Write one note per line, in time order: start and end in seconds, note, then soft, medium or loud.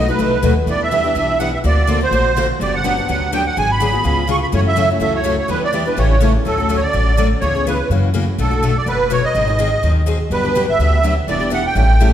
0.00 0.10 D#5 medium
0.08 0.18 A3 soft
0.08 0.19 D#4 soft
0.08 0.19 F#4 medium
0.08 0.54 B4 medium
0.19 0.40 C2 medium
0.19 0.37 B2 medium
0.19 0.37 F#3 medium
0.19 0.37 A3 medium
0.19 0.37 D#4 medium
0.19 0.37 F#4 medium
0.19 0.38 B4 medium
0.43 0.63 D#2 medium
0.43 0.53 B2 medium
0.43 0.53 F#3 medium
0.43 0.53 A3 medium
0.43 0.53 D#4 medium
0.43 0.53 F#4 medium
0.43 0.54 B4 loud
0.66 1.05 E2 medium
0.66 0.85 E3 medium
0.66 0.85 G3 medium
0.66 0.85 B3 medium
0.66 0.85 D4 medium
0.66 0.85 E4 medium
0.66 0.86 G4 medium
0.66 0.85 B4 medium
0.66 0.82 D5 medium
0.83 1.16 E5 medium
0.91 1.01 E3 medium
0.91 1.01 G3 medium
0.91 1.01 B3 medium
0.91 1.02 D4 medium
0.91 1.01 E4 medium
0.91 1.02 G4 medium
0.91 1.02 B4 medium
1.04 1.15 B3 soft
1.04 1.15 D4 soft
1.04 1.15 G4 medium
1.15 1.54 B1 medium
1.15 1.33 E3 medium
1.15 1.34 G3 medium
1.15 1.33 B3 medium
1.15 1.33 D4 medium
1.15 1.34 E4 medium
1.15 1.34 G4 medium
1.15 1.34 B4 medium
1.15 1.39 E5 medium
1.40 1.50 E3 medium
1.40 1.50 G3 medium
1.40 1.50 B3 medium
1.40 1.50 D4 medium
1.40 1.50 E4 medium
1.40 1.50 G4 medium
1.40 1.50 B4 loud
1.40 1.52 F#5 medium
1.54 1.59 E5 medium
1.64 2.02 D2 medium
1.64 1.81 D3 medium
1.64 1.82 A#3 medium
1.64 1.82 C4 medium
1.64 1.82 F#4 medium
1.64 1.82 C5 medium
1.64 2.00 D5 medium
1.87 1.97 D3 medium
1.87 1.98 A#3 medium
1.87 1.98 C4 medium
1.87 1.98 F#4 medium
1.87 1.98 C5 medium
2.01 2.11 C4 soft
2.01 2.12 F#4 medium
2.01 2.11 C5 medium
2.01 2.47 C5 medium
2.11 2.50 A#1 medium
2.11 2.30 D3 medium
2.11 2.30 A#3 medium
2.11 2.30 C4 medium
2.11 2.30 F#4 medium
2.11 2.30 C5 medium
2.37 2.46 D3 medium
2.37 2.46 A#3 medium
2.37 2.46 C4 medium
2.37 2.47 F#4 loud
2.37 2.47 C5 medium
2.60 2.98 G1 medium
2.60 2.78 D3 medium
2.60 2.78 F#3 medium
2.60 2.78 B3 medium
2.60 2.79 D4 medium
2.60 2.79 G4 medium
2.60 2.75 D5 medium
2.75 3.08 F#5 medium
2.84 2.94 D3 medium
2.84 2.94 F#3 medium
2.84 2.94 B3 medium
2.84 2.94 D4 medium
2.84 2.95 G4 medium
2.97 3.08 B3 soft
2.97 3.08 D4 medium
2.97 3.08 G4 medium
3.08 3.47 D2 medium
3.08 3.26 D3 medium
3.08 3.26 F#3 medium
3.08 3.26 B3 medium
3.08 3.27 D4 medium
3.08 3.27 G4 medium
3.08 3.31 F#5 medium
3.32 3.42 D3 medium
3.32 3.42 F#3 medium
3.32 3.42 B3 loud
3.32 3.42 D4 medium
3.32 3.43 G4 medium
3.32 3.45 G5 medium
3.47 3.57 F#5 medium
3.57 3.95 G#1 medium
3.57 3.74 D3 medium
3.57 3.74 F#3 medium
3.57 3.74 B3 medium
3.57 3.74 F#4 medium
3.57 3.75 G#4 medium
3.57 3.71 G#5 medium
3.72 4.05 B5 loud
3.80 3.90 D3 medium
3.80 3.90 F#3 medium
3.80 3.91 B3 medium
3.80 3.91 F#4 medium
3.80 3.91 G#4 medium
3.92 4.04 B3 soft
3.92 4.04 F#4 soft
3.92 4.04 G#4 medium
4.04 4.43 C#2 medium
4.04 4.22 C#3 medium
4.04 4.22 G#3 medium
4.04 4.22 B3 medium
4.04 4.22 F4 medium
4.04 4.23 G#4 medium
4.04 4.28 B5 medium
4.28 4.38 C#3 medium
4.28 4.38 G#3 medium
4.28 4.39 B3 medium
4.28 4.38 F4 loud
4.28 4.39 G#4 loud
4.28 4.36 C#6 medium
4.42 4.47 B5 medium
4.52 4.91 F#2 medium
4.52 4.70 C#3 medium
4.52 4.70 E3 medium
4.52 4.70 F#3 medium
4.52 4.70 A3 medium
4.52 4.71 C#4 medium
4.52 4.71 E4 medium
4.52 4.71 F#4 medium
4.52 4.71 A4 medium
4.52 4.61 C#5 medium
4.68 4.89 E5 loud
4.76 4.86 C#3 medium
4.76 4.87 E3 medium
4.76 4.87 F#3 medium
4.76 4.87 A3 medium
4.76 4.87 C#4 medium
4.76 4.87 E4 medium
4.76 4.87 F#4 medium
4.76 4.87 A4 loud
4.89 5.00 A3 soft
4.89 5.00 C#4 soft
4.89 5.00 F#4 soft
5.00 5.39 C#2 medium
5.00 5.18 C#3 medium
5.00 5.18 E3 medium
5.00 5.19 F#3 medium
5.00 5.18 A3 medium
5.00 5.19 C#4 medium
5.00 5.19 E4 medium
5.00 5.19 F#4 medium
5.00 5.19 A4 medium
5.00 5.14 E5 medium
5.15 5.37 C#5 medium
5.24 5.34 C#3 medium
5.24 5.34 E3 medium
5.24 5.35 F#3 medium
5.24 5.35 A3 medium
5.24 5.35 C#4 medium
5.24 5.35 E4 medium
5.24 5.35 F#4 medium
5.24 5.36 A4 loud
5.39 5.50 C#5 medium
5.48 5.87 E2 medium
5.48 5.66 E3 medium
5.48 5.67 G3 medium
5.48 5.66 B3 medium
5.48 5.67 D4 medium
5.48 5.67 E4 medium
5.48 5.67 G4 medium
5.48 5.62 B4 medium
5.48 5.68 B4 medium
5.64 5.88 D5 medium
5.73 5.83 E3 medium
5.73 5.83 G3 medium
5.73 5.83 B3 medium
5.73 5.83 D4 medium
5.73 5.84 E4 medium
5.73 5.83 G4 medium
5.73 5.84 B4 medium
5.85 5.97 B3 soft
5.85 5.97 D4 soft
5.85 5.96 G4 medium
5.85 5.98 B4 medium
5.97 6.36 A1 medium
5.97 6.15 C#3 medium
5.97 6.15 E3 medium
5.97 6.15 G3 medium
5.97 6.15 A3 medium
5.97 6.15 C#4 medium
5.97 6.16 E4 medium
5.97 6.15 G4 medium
5.97 6.16 A4 medium
5.97 6.33 C#5 medium
6.20 6.31 C#3 medium
6.20 6.31 E3 medium
6.20 6.32 G3 medium
6.20 6.31 A3 medium
6.20 6.31 C#4 medium
6.20 6.32 E4 medium
6.20 6.31 G4 medium
6.20 6.32 A4 loud
6.45 6.84 D2 medium
6.45 6.58 D3 medium
6.45 6.58 F#3 medium
6.45 6.58 A3 medium
6.45 6.59 C#4 medium
6.45 6.57 F#4 medium
6.45 6.77 A4 medium
6.58 6.69 A3 soft
6.58 6.69 C#4 soft
6.58 6.69 F#4 medium
6.69 6.79 D3 medium
6.69 6.79 F#3 medium
6.69 6.79 A3 medium
6.69 6.80 C#4 medium
6.69 6.80 F#4 medium
6.77 6.84 C#5 medium
6.83 7.27 D5 loud
6.93 7.32 A1 medium
6.93 7.11 D3 medium
6.93 7.11 F#3 medium
6.93 7.11 A3 medium
6.93 7.11 C#4 medium
6.93 7.12 F#4 medium
7.17 7.27 D3 medium
7.17 7.28 F#3 medium
7.17 7.28 A3 medium
7.17 7.28 C#4 medium
7.17 7.28 F#4 medium
7.41 7.80 C#2 medium
7.41 7.54 C#3 medium
7.41 7.54 E3 medium
7.41 7.55 B3 medium
7.41 7.55 C#4 medium
7.41 7.54 G#4 medium
7.41 7.66 C#5 medium
7.55 7.66 B3 soft
7.55 7.66 C#4 soft
7.55 7.65 G#4 medium
7.67 7.76 C#3 medium
7.67 7.76 E3 medium
7.67 7.76 B3 medium
7.67 7.77 C#4 medium
7.67 7.77 G#4 medium
7.67 7.89 B4 medium
7.90 8.28 F#2 medium
7.90 8.08 C#3 medium
7.90 8.08 E3 medium
7.90 8.08 A#3 medium
7.90 8.08 C#4 medium
7.90 8.09 F#4 medium
8.14 8.24 C#3 medium
8.14 8.24 E3 medium
8.14 8.24 A#3 medium
8.14 8.24 C#4 medium
8.14 8.24 F#4 loud
8.38 8.77 B1 medium
8.38 8.51 B2 medium
8.38 8.51 F#3 medium
8.38 8.51 A3 medium
8.38 8.51 D4 medium
8.38 8.50 F#4 medium
8.38 8.77 A4 medium
8.51 8.62 A3 soft
8.51 8.62 D4 soft
8.51 8.62 F#4 medium
8.63 8.72 B2 medium
8.63 8.72 F#3 medium
8.63 8.73 A3 medium
8.63 8.73 D4 medium
8.63 8.73 F#4 medium
8.77 8.88 D5 medium
8.86 9.25 F#1 medium
8.86 9.04 B2 medium
8.86 9.04 F#3 medium
8.86 9.04 A3 medium
8.86 9.05 D4 medium
8.86 9.05 F#4 medium
8.86 9.12 B4 medium
9.10 9.20 B2 medium
9.10 9.20 F#3 medium
9.10 9.20 A3 medium
9.10 9.21 D4 medium
9.10 9.21 F#4 loud
9.10 9.25 C#5 medium
9.25 9.92 D#5 medium
9.35 9.73 G#1 medium
9.35 9.47 D#3 medium
9.35 9.48 F#3 medium
9.35 9.47 C4 medium
9.35 9.48 D#4 medium
9.35 9.46 G#4 medium
9.48 9.58 C4 soft
9.48 9.58 D#4 soft
9.48 9.58 G#4 medium
9.59 9.68 D#3 medium
9.59 9.69 F#3 medium
9.59 9.69 C4 medium
9.59 9.69 D#4 medium
9.59 9.69 G#4 medium
9.83 10.21 D#2 medium
9.83 10.00 D#3 medium
9.83 10.00 F#3 medium
9.83 10.01 C4 medium
9.83 10.01 D#4 medium
9.83 10.01 G#4 medium
10.06 10.16 D#3 medium
10.06 10.16 F#3 medium
10.06 10.17 C4 medium
10.06 10.17 D#4 medium
10.06 10.17 G#4 medium
10.30 10.69 G1 medium
10.30 10.43 D3 medium
10.30 10.44 F#3 medium
10.30 10.44 B3 medium
10.30 10.44 D4 medium
10.30 10.43 G4 medium
10.30 10.67 B4 medium
10.44 10.54 B3 soft
10.44 10.55 D4 soft
10.44 10.55 G4 medium
10.55 10.65 D3 medium
10.55 10.65 F#3 medium
10.55 10.65 B3 medium
10.55 10.65 D4 medium
10.55 10.66 G4 medium
10.69 11.14 E5 medium
10.79 11.17 D2 medium
10.79 10.97 D3 medium
10.79 10.97 F#3 medium
10.79 10.97 B3 medium
10.79 10.98 D4 medium
10.79 10.98 G4 medium
11.04 11.13 D3 medium
11.04 11.13 F#3 medium
11.04 11.14 B3 medium
11.04 11.14 D4 medium
11.04 11.14 G4 medium
11.27 11.66 E1 medium
11.27 11.40 E3 medium
11.27 11.45 G3 medium
11.27 11.41 B3 medium
11.27 11.40 D4 medium
11.27 11.46 E4 medium
11.27 11.39 G4 medium
11.27 11.46 B4 medium
11.27 11.50 D5 medium
11.40 11.50 B3 soft
11.40 11.50 D4 soft
11.40 11.51 G4 medium
11.50 11.61 E3 medium
11.50 11.61 G3 medium
11.50 11.61 B3 medium
11.50 11.61 D4 medium
11.50 11.61 E4 medium
11.50 11.61 G4 medium
11.50 11.62 B4 medium
11.50 11.66 F#5 medium
11.66 12.10 G5 medium
11.75 12.13 A1 medium
11.75 11.93 C#3 medium
11.75 11.93 E3 medium
11.75 11.93 G3 medium
11.75 11.93 A3 medium
11.75 11.94 C#4 medium
11.75 11.93 E4 medium
11.75 11.94 G4 medium
11.75 11.94 A4 medium
12.00 12.10 C#3 medium
12.00 12.10 E3 medium
12.00 12.10 G3 medium
12.00 12.10 A3 medium
12.00 12.10 C#4 medium
12.00 12.10 E4 medium
12.00 12.10 G4 loud
12.00 12.10 A4 medium